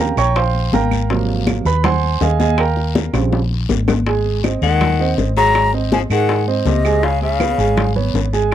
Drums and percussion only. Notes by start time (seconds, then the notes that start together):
0.17 high bongo, high conga, short guiro, claves
0.36 high bongo, high conga, long guiro
0.55 high conga
0.73 high bongo, low bongo, high conga, short guiro
0.91 high bongo, high conga, short guiro, claves
1.10 high bongo, high conga, long guiro
1.29 high bongo, high conga
1.47 high bongo, high conga, short guiro, claves
1.65 high bongo, high conga, short guiro
1.84 high bongo, high conga, low conga, long guiro, claves
2.03 high conga
2.21 high bongo, low bongo, high conga, short guiro
2.39 high bongo, high conga, short guiro
2.58 high bongo, high conga, long guiro, claves
2.77 high bongo, high conga
2.95 high bongo, high conga, short guiro
3.14 high bongo, high conga, short guiro, claves
3.32 high bongo, high conga, long guiro
3.51 high conga
3.69 low bongo, high conga, short guiro
3.88 low bongo, high conga, short guiro, claves
4.06 high bongo, high conga, long guiro
4.25 high conga
4.44 high bongo, high conga, short guiro, claves
4.62 high conga, short guiro
4.81 high bongo, high conga, low conga, long guiro, claves
4.99 high bongo, high conga
5.18 high bongo, low bongo, high conga, short guiro
5.36 high bongo, high conga, short guiro
5.55 high bongo, high conga, long guiro, claves
5.73 high conga
5.92 high bongo, high conga, short guiro
6.10 high conga, short guiro, claves
6.29 high bongo, high conga, long guiro
6.47 high bongo, high conga
6.65 high bongo, low bongo, high conga, short guiro
6.84 high bongo, high conga, short guiro, claves
7.03 high bongo, high conga, long guiro
7.22 high conga
7.40 high bongo, high conga, short guiro, claves
7.58 high conga, short guiro
7.77 high bongo, high conga, low conga, long guiro, claves
7.96 high bongo, high conga, low conga
8.14 high bongo, low bongo, high conga, short guiro
8.33 high bongo, high conga, short guiro